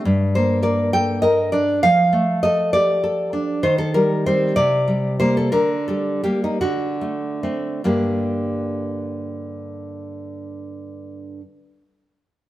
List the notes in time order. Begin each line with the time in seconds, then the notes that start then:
0.05 G2
0.35 A#3 C5
0.63 A#4 D5
0.93 A4 G5
1.22 A#4 D#5
1.52 D4 D5
1.83 F3 F5
2.13 A3
2.43 A4 D#5
2.73 G4 D5
3.04 A4
3.33 D4
3.63 D#3 C5
3.78 A4
3.94 G3 A#4
4.26 G3 C4 C5
4.56 C3 D5
4.88 G3
5.20 G3 A#3 C5
5.37 A4
5.52 D3 A#4
5.88 G3 A4
6.24 G3 A#3 G4
6.44 D#4
6.61 D3 F#4
7.01 A3
7.43 A3 C4
7.84 G2 D3 A#3 D4 G4